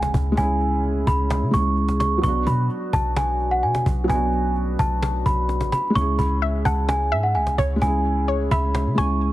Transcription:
Already playing: C#2 G#3 C#4 E4 G#4, impact
0.02 cajon slap
0.14 C#2, cajon bass
0.32 G#3 C#4
0.37 C#2 E4 G#5, cajon bass
0.43 G#4
0.61 cajon slap
0.84 cajon slap
1.07 C#2 B5, cajon bass
1.30 cajon slap
1.42 C#3
1.51 C#2 G#3 C#4 E4 C#6, cajon bass
1.56 G#4
1.77 cajon slap
1.89 cajon slap
2.00 C#6, cajon slap
2.18 F#3 B3
2.23 B1 D4 C#6, cajon bass
2.29 F#4
2.47 B2 B5, cajon bass
2.70 cajon slap
2.93 B1 A5, cajon bass
3.17 G#5, cajon slap
3.40 cajon slap
3.51 F#5
3.63 B2 G#5, cajon slap
3.75 cajon slap
3.86 B1, cajon bass
4.04 F#3 B3
4.09 B1 D4 G#5, cajon bass
4.15 F#4
4.33 cajon slap
4.56 cajon slap
4.79 B1 A5, cajon bass
5.03 cajon slap
5.14 cajon slap
5.20 cajon slap
5.26 B1 B5, cajon bass
5.49 cajon slap
5.61 A1, cajon slap
5.72 B5, cajon slap
5.80 cajon slap
5.88 G#3, cajon slap
5.94 C#2 C#4 E4 C#6, cajon bass
6.01 G#4
6.19 C#2 B5, cajon bass
6.42 E5, cajon slap
6.65 C#2 F#5 A5, cajon bass
6.89 G#5, cajon slap
7.12 G#2 E5, cajon slap
7.23 F#5
7.35 C#2 G#5, cajon slap
7.47 cajon slap
7.58 C#2 C#5, cajon bass
7.76 G#3 C#4
7.82 C#2 E4 G#5, cajon bass
7.87 G#4
8.05 cajon slap
8.28 C#5, cajon slap
8.51 C#2 E5 B5, cajon bass
8.75 cajon slap
8.86 C#3
8.95 C#2 G#3 C#4 E4 G#5 C#6, cajon bass
9.01 G#4
9.21 cajon slap

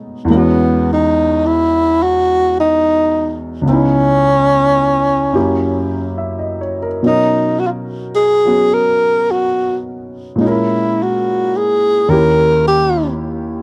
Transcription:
Already playing: B2 F#3 G#3 A3 B3 C#4 D#4
0.25 E2 E3
0.29 G#3 A#3 C#4
0.36 B3 F#4
0.93 D#4
1.46 E4
2.03 F#4
2.60 D#4
3.61 C#2 C#3
3.66 B3 C#4 D#4
3.72 E4
5.33 F#2 F#3 A#3 E4 G4
6.18 E5
6.39 D#5
6.61 C#5
6.83 A#4
7.03 B2 F#3 C#4 D#4
7.08 A#4
7.59 F#4
7.67 F4
8.15 G#4
8.45 F#3 B3 C#4 F#4
8.74 A#4
9.31 F#4
10.36 A#2 G#3
10.40 C#4 D#4
10.45 E4 A#4
11.03 F#4
11.57 G#4
12.08 D#2 D#3 C#4 E4 G4 A#4
12.67 G4

